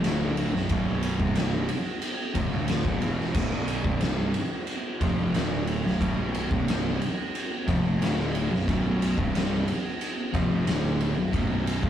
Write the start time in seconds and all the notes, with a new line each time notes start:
0.04 D1 D2 A2 D3, snare, ride
0.37 ride
0.53 B0 B1 F#2, snare
0.69 B0 B1 F#2 B2, kick, ride
1.03 ride
1.20 C1 C2 G2 C3, kick
1.35 snare, ride
1.69 ride
2.02 ride
2.35 F1 F2 C3, kick, ride
2.50 D1 D2 A2 D3
2.68 snare, ride
2.85 B0 B1 F#2, kick, snare
3.01 E1 E2 B2 E3, ride
3.20 snare
3.34 B0 B1 F#2 B2, kick, crash
3.68 ride
3.84 C1 C2 G2 C3, kick
4.01 snare, ride
4.34 ride
4.67 ride
5.01 F1 F2 C3 F3, kick, ride
5.33 D1 D2 A2 D3, snare, ride
5.67 ride
5.83 B0 B1 F#2, snare
5.99 B0 B1 F#2 B2, kick, ride
6.34 ride
6.50 C1 C2 G2 C3, kick
6.68 snare, ride
7.02 ride
7.35 ride
7.66 F1 F2 C3 F3, kick, ride
8.00 D1 D2 A2 D3, snare, ride
8.20 snare
8.35 ride
8.50 B0 B1 F#2
8.54 snare
8.66 B0 B1 F#2 B2, kick, ride
9.02 ride
9.18 C1 C2 G2 C3, kick
9.35 snare, ride
9.68 ride
10.01 ride
10.33 F1 F2 C3 F3, kick, ride
10.66 D1 D2 A2 D3, snare, ride
10.86 snare
11.01 ride
11.16 B0 B1 F#2
11.32 B0 B1 F#2 B2, kick, ride
11.67 ride
11.82 C1 C2 G2 C3, kick